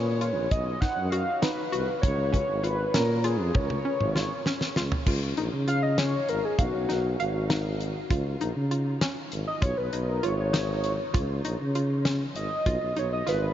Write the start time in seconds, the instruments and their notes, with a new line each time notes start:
Already playing: tuba A#2, analog synth lead C#5
0.21 synth arpeggio sound F4, closed hi-hat
0.37 tuba A#1
0.51 tuba B1, analog synth lead D#5, kick, closed hi-hat
0.81 synth arpeggio sound D#4, analog synth lead F#5, kick, snare, closed hi-hat
0.97 tuba F#2
1.10 synth arpeggio sound F#4, analog synth lead F5, closed hi-hat
1.42 synth arpeggio sound D#4, analog synth lead B4, snare, closed hi-hat
1.72 tuba C2, synth arpeggio sound F#4, closed hi-hat
2.02 tuba C#2, analog synth lead C#5, kick, closed hi-hat
2.32 synth arpeggio sound C#4, analog synth lead C#5, kick, closed hi-hat
2.49 tuba G#1
2.63 synth arpeggio sound F4, analog synth lead B4, closed hi-hat
2.94 tuba A#2, synth arpeggio sound C#4, analog synth lead A#4, snare, closed hi-hat
3.24 synth arpeggio sound F4, analog synth lead G#4, closed hi-hat
3.40 tuba F2
3.55 tuba C#2, analog synth lead C#5, kick, high tom
3.70 high tom
3.85 synth arpeggio sound C#4
4.01 tuba G#1, mid tom
4.16 synth arpeggio sound F4, snare
4.46 synth arpeggio sound C#4, snare
4.61 snare
4.76 tuba C#2, synth arpeggio sound F4, snare
4.92 floor tom
5.06 tuba C#2, synth arpeggio sound F4, kick, crash
5.37 tuba A#1, synth arpeggio sound D#4, closed hi-hat
5.53 tuba C#3
5.68 synth arpeggio sound F4, analog synth lead F5, closed hi-hat
5.83 analog synth lead D#5
5.98 synth arpeggio sound C#4, analog synth lead C#5, snare, closed hi-hat
6.29 tuba G#1, analog synth lead A#4, closed hi-hat
6.45 analog synth lead G#4
6.59 tuba B1, analog synth lead F#4, synth arpeggio sound F5, kick, closed hi-hat
6.75 tuba B1
6.89 tuba B1, synth arpeggio sound D#4, snare, closed hi-hat
7.20 tuba G#1, synth arpeggio sound F5, closed hi-hat
7.50 synth arpeggio sound D#4, snare, closed hi-hat
7.81 closed hi-hat
8.10 tuba C#2, synth arpeggio sound F4, kick, closed hi-hat
8.40 tuba A#1, synth arpeggio sound D#4, closed hi-hat
8.56 tuba C#3
8.71 synth arpeggio sound F4, closed hi-hat
9.01 synth arpeggio sound C#4, snare, closed hi-hat
9.32 tuba G#1, closed hi-hat
9.47 analog synth lead D#5
9.62 tuba B1, synth arpeggio sound F4, analog synth lead C#5, kick, closed hi-hat
9.77 tuba B1, analog synth lead B4
9.93 tuba B1, synth arpeggio sound D#4, closed hi-hat
10.08 analog synth lead A#4
10.23 tuba G#1, synth arpeggio sound F4, analog synth lead C#5, closed hi-hat
10.40 analog synth lead C#5
10.53 synth arpeggio sound D#4, snare, closed hi-hat
10.84 closed hi-hat
11.14 tuba C#2, synth arpeggio sound F4, kick, closed hi-hat
11.45 tuba A#1, synth arpeggio sound D#4, closed hi-hat
11.60 tuba C#3
11.75 synth arpeggio sound F4, closed hi-hat
12.05 synth arpeggio sound C#4, snare, closed hi-hat
12.36 tuba G#1, analog synth lead D#5, closed hi-hat
12.66 tuba B1, synth arpeggio sound F4, kick, closed hi-hat
12.80 tuba B1
12.96 tuba B1, synth arpeggio sound D#4, analog synth lead C#5, closed hi-hat
13.13 analog synth lead D#5
13.26 tuba G#1, synth arpeggio sound F4, analog synth lead B4, snare, closed hi-hat